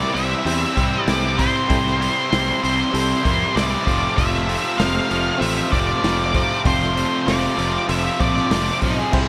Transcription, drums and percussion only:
0.17 open hi-hat medium
0.47 open hi-hat medium
0.77 kick medium
0.77 open hi-hat medium
1.08 snare loud
1.08 open hi-hat medium
1.39 kick medium
1.39 open hi-hat medium
1.70 kick loud
1.70 open hi-hat medium
1.87 snare soft
2.02 open hi-hat medium
2.33 snare loud
2.33 open hi-hat medium
2.64 open hi-hat medium
2.95 open hi-hat medium
3.25 kick medium
3.25 open hi-hat medium
3.57 snare loud
3.57 open hi-hat medium
3.87 kick medium
3.87 open hi-hat medium
4.18 kick loud
4.18 open hi-hat medium
4.35 snare soft
4.49 open hi-hat medium
4.80 snare loud
4.80 open hi-hat medium
5.11 open hi-hat medium
5.42 open hi-hat medium
5.73 kick medium
5.73 open hi-hat medium
6.04 snare loud
6.04 open hi-hat medium
6.34 kick loud
6.34 open hi-hat medium
6.51 snare soft
6.65 kick loud
6.65 open hi-hat medium
6.82 snare soft
6.97 open hi-hat medium
7.28 snare loud
7.28 open hi-hat medium
7.59 open hi-hat medium
7.89 open hi-hat medium
8.20 kick medium
8.20 open hi-hat medium
8.36 snare soft
8.51 snare loud
8.51 open hi-hat medium
8.82 kick medium
8.82 open hi-hat medium
9.13 kick loud
9.13 crash loud

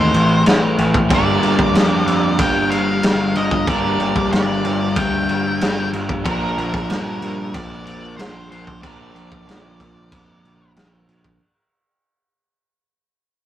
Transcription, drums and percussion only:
0.14 crash medium
0.46 snare loud
0.46 crash medium
0.78 crash medium
0.94 kick medium
1.10 kick loud
1.10 crash medium
1.43 crash medium
1.59 kick medium
1.75 snare loud
1.75 crash medium
2.08 crash medium
2.39 kick loud
2.39 crash medium
2.71 crash medium
3.03 snare loud
3.03 crash medium
3.35 crash medium
3.51 kick medium
3.67 kick medium
3.67 crash medium
4.00 crash medium
4.16 kick medium
4.33 snare loud
4.33 crash medium
4.65 crash medium
4.96 kick loud
4.96 crash medium
5.29 crash medium
5.61 snare loud
5.61 crash medium
5.93 crash medium
6.09 kick medium
6.26 kick loud
6.26 crash medium
6.58 crash medium
6.74 kick medium
6.74 snare soft
6.90 snare loud
6.90 crash medium
7.22 crash medium
7.54 kick loud
7.54 crash medium
7.87 crash medium
8.19 snare loud
8.19 crash medium
8.52 crash medium
8.67 kick medium
8.83 kick loud
8.83 crash medium
9.16 crash medium
9.32 kick loud
9.49 snare loud
9.49 crash medium
9.80 kick medium
9.80 crash medium
10.12 kick loud
10.12 crash medium
10.45 crash medium
10.76 snare loud
10.76 crash medium
11.09 crash medium
11.24 kick medium

